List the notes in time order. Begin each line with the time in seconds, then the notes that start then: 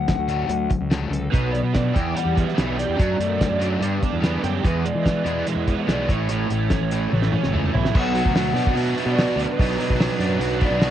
Already playing: D2 F#5
0.08 D3 F#3, kick, snare, closed hi-hat
0.17 D2
0.28 D3 F#3 A3, closed hi-hat
0.48 D2 D3 F#3, closed hi-hat
0.70 D3 F#3, kick, closed hi-hat
0.80 C#2
0.90 D3 F#3 A3, snare, closed hi-hat
1.10 C#2 D3 F#3 A4, closed hi-hat
1.31 B1 B2 F#3 B3 B4, kick, closed hi-hat
1.51 B2 F#3 B3 D5, closed hi-hat
1.63 B2
1.74 B2 F#3 D4 D5, kick, snare, closed hi-hat
1.93 E2 E3 B3 E4 G5, kick, closed hi-hat
2.15 E3 G3 B3 F#5, closed hi-hat
2.25 E2
2.35 E3 B3 E5, kick, closed hi-hat
2.49 snare
2.55 B1 E3 G3 B3 E4, snare, closed hi-hat
2.77 E3 B3 G4 D5, closed hi-hat
2.89 E2
2.96 F#2 F#3 A3 D4, kick, closed hi-hat
3.18 F#2 F#3 A3, closed hi-hat
3.38 F#3 A3 D4, kick, snare, closed hi-hat
3.50 F#2
3.59 F#3 A3 D4, closed hi-hat
3.80 G2 G3 B3 D4, closed hi-hat
4.01 G3 B3 D4, kick, closed hi-hat
4.13 E2
4.21 G3 B3 D4, snare, closed hi-hat
4.43 F#2 G3 B3 G4 A4, closed hi-hat
4.63 E2 E3 G#3 B3 B4, kick, closed hi-hat
4.84 E3 G#3 D5, closed hi-hat
4.95 E3
5.05 E3 G#3 B3, kick, snare, closed hi-hat
5.24 E2 E3 G#3 B3 D5, closed hi-hat
5.46 E3 G#3 E5, closed hi-hat
5.56 E2
5.67 E3 G#3 B3, kick, closed hi-hat
5.81 C#5
5.87 B1 E3 G#3 B3 D5, snare, closed hi-hat
6.08 A1 A2 E3 A3 C#5, kick, closed hi-hat
6.28 A2 E3 A3, closed hi-hat
6.49 A1 A2 E3 A3, closed hi-hat
6.70 A2 E3 C#4, kick, snare, closed hi-hat
6.81 A1
6.91 A2 E3 A3, closed hi-hat
7.12 A1 A2 E3 A3, high tom
7.22 snare
7.31 A2 E3 C#4 C#5, mid tom
7.43 F#1, snare
7.52 C#2 A2 E3 A3 C#5, mid tom
7.64 mid tom
7.73 B1 A2 E3 E4 E5, floor tom
7.85 snare
7.93 B1 B2 F#3 B3 D4, kick, crash
7.99 F#5
8.15 F#3 B3 D4, open hi-hat
8.25 D2, kick
8.35 B2 F#3 B3 D4 F#5, snare, open hi-hat
8.53 B2 B3 D4, open hi-hat
8.58 F#3
8.67 kick
8.74 B2 F#4, open hi-hat
8.79 E5
8.97 F#3 B3 D4, open hi-hat
9.06 B2
9.10 D5
9.15 B2 F#3 B3 D4 F#4, snare, open hi-hat
9.36 D2 D4, open hi-hat
9.42 B4
9.58 B1 B2 F#3 B3 D4, kick, open hi-hat
9.78 F#3 B3 D4, open hi-hat
9.90 B1, kick
9.99 B2 F#3 B3 D4, snare, open hi-hat
10.19 F#2 F#3 B3 D4, open hi-hat
10.39 B1 F#4, open hi-hat
10.60 F#3 B3 D4, kick, open hi-hat
10.65 D5
10.71 B1
10.79 B2 F#3 B3 D4 F#4, snare, open hi-hat
10.84 D5